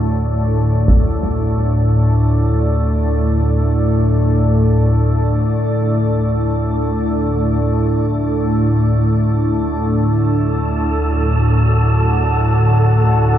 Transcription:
0.00 13.38 D2 medium
0.00 13.38 A2 medium
0.00 10.11 D4 medium
0.00 11.23 A4 medium
0.00 10.12 D5 medium
0.88 taiko medium
10.10 13.38 F#4 medium
10.10 13.38 A4 medium
10.10 13.38 A5 medium
11.19 13.38 F#5 medium
12.00 13.38 C#5 medium

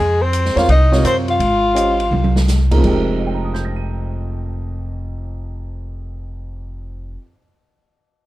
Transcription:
0.00 0.52 F2 medium
0.00 0.23 G#3 medium
0.00 0.23 G#4 medium
0.22 0.59 C4 medium
0.22 0.60 C5 medium
0.33 hi-hat pedal soft
0.33 ride medium
0.45 snare soft
0.56 0.67 E2 medium
0.56 0.67 C4 medium
0.56 0.67 F4 medium
0.56 0.69 F4 medium
0.56 0.67 A#4 medium
0.56 0.67 C#5 medium
0.56 0.70 F5 medium
0.56 snare soft
0.56 ride soft
0.68 1.02 C2 medium
0.68 1.02 D#4 medium
0.68 1.04 D#5 medium
0.68 ride soft
0.91 1.37 C3 medium
0.91 1.38 F4 medium
0.91 1.38 A#4 medium
0.91 1.38 C#5 medium
0.91 snare soft
1.04 1.37 F#2 medium
1.04 1.15 C4 medium
1.04 1.17 C5 medium
1.04 cross-stick medium
1.04 hi-hat pedal medium
1.04 ride medium
1.28 2.43 F4 medium
1.28 2.44 F5 medium
1.28 ride soft
1.40 2.08 G#1 medium
1.40 ride medium
1.75 1.96 C#4 medium
1.75 1.96 G4 soft
1.75 1.97 C5 soft
1.75 1.97 D#5 medium
1.75 hi-hat pedal soft
1.75 ride soft
2.00 ride soft
2.11 2.79 C2 medium
2.11 high tom soft
2.24 high tom soft
2.36 snare medium
2.48 snare medium
2.48 hi-hat pedal medium
2.71 2.78 F3 medium
2.71 2.82 A#3 soft
2.71 2.82 D#4 soft
2.71 2.82 G#4 soft
2.71 2.82 A#4 medium
2.71 kick medium
2.71 crash medium
2.78 7.16 F2 medium
2.78 7.17 F3 medium
2.82 7.15 F1 medium
2.82 7.18 G#3 medium
2.82 7.20 D#4 medium
2.82 kick soft
2.82 crash medium
2.87 7.21 G4 medium
2.87 7.22 A#4 medium
3.19 7.15 D#5 soft
3.27 7.19 G5 soft
3.35 7.23 A#5 soft
3.44 7.27 D#6 soft
3.54 7.32 G6 soft
3.54 cross-stick soft
3.65 7.38 A#6 soft
3.76 7.43 D#7 soft

